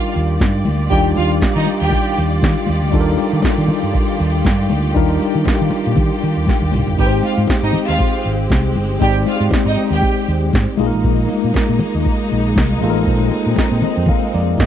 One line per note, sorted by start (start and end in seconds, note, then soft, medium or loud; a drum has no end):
0.00 6.95 D#3 medium
0.00 0.87 G3 medium
0.00 0.87 D4 medium
0.00 0.88 D#4 medium
0.00 0.14 F4 medium
0.00 0.88 F4 medium
0.00 6.95 F4 medium
0.00 10.75 G4 medium
0.00 0.92 A#4 medium
0.00 6.95 D5 medium
0.00 0.13 F5 medium
0.15 0.37 D#2 loud
0.15 open hi-hat medium
0.15 muted conga soft
0.28 closed hi-hat soft
0.40 0.62 G2 loud
0.40 kick loud
0.40 snare loud
0.40 closed hi-hat medium
0.40 high conga medium
0.65 0.88 D2 medium
0.65 open hi-hat medium
0.65 high conga medium
0.79 closed hi-hat medium
0.90 1.13 D#2 loud
0.90 2.89 G3 medium
0.90 2.89 D4 medium
0.90 2.90 D#4 medium
0.90 2.90 F4 medium
0.90 1.02 G4 medium
0.90 2.90 G4 medium
0.90 1.01 G5 loud
0.90 kick loud
0.90 closed hi-hat medium
1.16 1.39 D#2 loud
1.16 1.27 F4 medium
1.16 1.27 F5 loud
1.16 open hi-hat medium
1.16 muted conga medium
1.30 closed hi-hat soft
1.41 kick loud
1.41 snare loud
1.41 closed hi-hat medium
1.41 high conga medium
1.56 1.66 D#3 loud
1.56 1.66 D#4 medium
1.56 1.66 D#5 medium
1.66 open hi-hat medium
1.66 muted conga medium
1.80 1.91 D#2 loud
1.80 2.16 G4 medium
1.80 2.16 G5 medium
1.80 closed hi-hat soft
1.90 kick loud
1.90 closed hi-hat medium
1.90 muted conga medium
2.17 2.39 D#2 loud
2.17 open hi-hat medium
2.30 closed hi-hat soft
2.42 2.54 D#3 loud
2.42 kick loud
2.42 snare loud
2.42 closed hi-hat medium
2.42 high conga medium
2.67 2.80 D#2 medium
2.67 open hi-hat medium
2.67 high conga medium
2.82 2.92 D2 medium
2.82 closed hi-hat medium
2.91 3.15 D#2 loud
2.91 4.91 G3 medium
2.91 4.91 D4 medium
2.91 4.91 D#4 medium
2.91 4.92 F4 medium
2.91 3.01 A4 medium
2.91 kick loud
2.91 closed hi-hat medium
3.00 4.95 A#4 loud
3.18 open hi-hat medium
3.18 muted conga medium
3.32 3.43 D#3 loud
3.32 closed hi-hat soft
3.42 muted fingered electric bass stroke soft
3.42 kick loud
3.42 snare loud
3.42 closed hi-hat medium
3.42 high conga medium
3.58 3.68 D#3 loud
3.68 open hi-hat medium
3.68 muted conga medium
3.68 low conga medium
3.83 3.93 G2 loud
3.83 closed hi-hat soft
3.93 kick loud
3.93 closed hi-hat medium
3.93 muted conga medium
4.19 4.41 D#2 loud
4.19 open hi-hat medium
4.19 muted conga soft
4.32 closed hi-hat medium
4.45 4.67 G2 medium
4.45 kick loud
4.45 snare loud
4.45 closed hi-hat medium
4.45 high conga medium
4.70 4.92 D2 medium
4.70 open hi-hat medium
4.70 high conga medium
4.84 closed hi-hat medium
4.94 5.18 D#2 loud
4.94 6.94 G3 medium
4.94 6.94 D4 medium
4.94 6.94 D#4 medium
4.94 6.95 F4 medium
4.94 6.95 A#4 medium
4.94 kick loud
4.94 closed hi-hat medium
5.20 open hi-hat medium
5.20 muted conga medium
5.35 5.45 D#3 loud
5.35 closed hi-hat soft
5.45 kick loud
5.45 snare loud
5.45 closed hi-hat medium
5.45 high conga medium
5.61 5.71 D#3 loud
5.71 open hi-hat medium
5.71 muted conga medium
5.71 low conga medium
5.86 5.96 A#2 medium
5.86 closed hi-hat medium
5.96 6.09 D#3 loud
5.96 kick loud
5.96 closed hi-hat medium
5.96 muted conga medium
5.96 low conga medium
6.23 6.34 D#3 loud
6.23 open hi-hat medium
6.36 6.47 D#2 medium
6.36 closed hi-hat medium
6.47 kick loud
6.47 snare medium
6.47 closed hi-hat medium
6.47 high conga medium
6.62 6.71 D#2 medium
6.72 6.85 C2 loud
6.72 mid tom loud
6.72 open hi-hat medium
6.72 high conga medium
6.87 6.97 G1 medium
6.87 closed hi-hat medium
6.87 floor tom loud
6.97 7.20 G#1 loud
6.97 8.97 G#3 medium
6.97 10.75 G#3 medium
6.97 10.74 C4 medium
6.97 8.97 C4 medium
6.97 8.97 D#4 medium
6.97 7.10 G4 medium
6.97 8.98 G4 medium
6.97 7.06 B4 medium
6.97 7.10 G5 loud
6.97 kick loud
6.97 crash medium
7.06 9.01 C5 medium
7.23 7.35 F4 medium
7.23 7.35 F5 medium
7.23 open hi-hat medium
7.23 muted conga medium
7.37 7.48 G#2 loud
7.37 closed hi-hat soft
7.48 kick loud
7.48 snare loud
7.48 closed hi-hat medium
7.48 high conga medium
7.63 7.73 G#2 loud
7.63 7.73 D#4 medium
7.63 7.73 D#5 medium
7.73 open hi-hat medium
7.73 muted conga medium
7.73 low conga medium
7.88 7.98 D#2 medium
7.88 8.23 F4 medium
7.88 8.23 F5 loud
7.88 closed hi-hat soft
7.98 kick loud
7.98 closed hi-hat soft
7.98 muted conga medium
8.24 8.47 G#1 medium
8.24 open hi-hat medium
8.24 muted conga soft
8.38 closed hi-hat medium
8.50 8.72 C2 loud
8.50 kick loud
8.50 snare loud
8.50 closed hi-hat medium
8.50 high conga medium
8.75 8.97 G1 medium
8.75 open hi-hat medium
8.75 high conga medium
8.90 closed hi-hat medium
9.00 9.23 G#1 loud
9.00 10.74 G#3 medium
9.00 10.75 C4 medium
9.00 10.75 D#4 medium
9.00 9.12 G4 loud
9.00 10.76 G4 medium
9.00 10.76 D5 medium
9.00 9.12 G5 loud
9.00 kick loud
9.00 closed hi-hat medium
9.26 9.39 F4 medium
9.26 9.39 F5 loud
9.26 open hi-hat medium
9.26 muted conga medium
9.40 9.50 G#2 medium
9.40 closed hi-hat soft
9.51 muted fingered electric bass stroke soft
9.51 kick loud
9.51 snare loud
9.51 closed hi-hat medium
9.51 high conga medium
9.65 9.75 G#2 medium
9.65 9.76 D#4 medium
9.65 9.76 D#5 medium
9.77 open hi-hat medium
9.77 muted conga soft
9.91 10.01 D#2 medium
9.91 10.26 G4 medium
9.91 10.27 G5 medium
9.91 closed hi-hat soft
10.02 kick loud
10.02 closed hi-hat medium
10.02 muted conga medium
10.28 10.50 D#2 loud
10.28 open hi-hat medium
10.41 closed hi-hat soft
10.53 10.65 G#2 loud
10.53 kick loud
10.53 snare loud
10.53 closed hi-hat medium
10.53 high conga medium
10.77 10.90 A#1 loud
10.77 12.77 G#3 medium
10.77 14.66 G#3 medium
10.77 12.77 A#3 medium
10.77 12.80 A#3 medium
10.77 12.78 D#4 medium
10.77 14.66 D#4 medium
10.77 12.78 F4 medium
10.77 10.86 G#4 medium
10.77 open hi-hat medium
10.77 high conga medium
10.86 12.81 A#4 loud
10.93 11.03 A1 medium
10.93 closed hi-hat medium
11.04 11.26 A#1 loud
11.04 kick loud
11.04 closed hi-hat medium
11.29 open hi-hat medium
11.29 muted conga medium
11.43 11.54 A#2 loud
11.43 closed hi-hat soft
11.54 kick loud
11.54 snare loud
11.54 closed hi-hat medium
11.54 high conga medium
11.69 11.79 A#2 loud
11.79 open hi-hat medium
11.79 muted conga medium
11.79 low conga medium
11.94 12.04 D#2 medium
11.94 closed hi-hat soft
12.04 kick loud
12.04 closed hi-hat medium
12.04 muted conga medium
12.31 12.53 A#1 loud
12.31 open hi-hat medium
12.44 closed hi-hat medium
12.56 12.78 C2 loud
12.56 kick loud
12.56 snare loud
12.56 closed hi-hat medium
12.56 high conga medium
12.81 13.03 A1 loud
12.81 14.66 G#3 medium
12.81 14.66 A#3 medium
12.81 14.66 C4 medium
12.81 14.66 D#4 medium
12.81 14.66 F4 medium
12.81 12.89 A4 medium
12.81 open hi-hat medium
12.81 high conga medium
12.90 14.60 A#4 loud
12.95 closed hi-hat medium
13.07 13.29 A#1 loud
13.07 kick loud
13.07 closed hi-hat medium
13.31 open hi-hat medium
13.31 muted conga medium
13.45 13.56 A#2 loud
13.45 closed hi-hat soft
13.56 kick loud
13.56 snare loud
13.56 closed hi-hat medium
13.56 high conga medium
13.72 13.81 A#2 loud
13.82 14.07 D#5 medium
13.82 open hi-hat medium
13.82 muted conga medium
13.82 low conga medium
13.97 14.07 F2 loud
13.97 closed hi-hat soft
14.06 14.32 F5 medium
14.06 kick loud
14.06 closed hi-hat medium
14.06 muted conga medium
14.06 low conga medium
14.34 14.55 F2 medium
14.34 14.58 D5 medium
14.34 open hi-hat medium
14.46 closed hi-hat soft
14.58 14.66 G#2 loud
14.58 14.66 G4 medium
14.58 14.66 A#4 medium
14.58 14.66 D#5 medium
14.58 kick loud
14.58 snare loud
14.58 closed hi-hat medium
14.58 high conga medium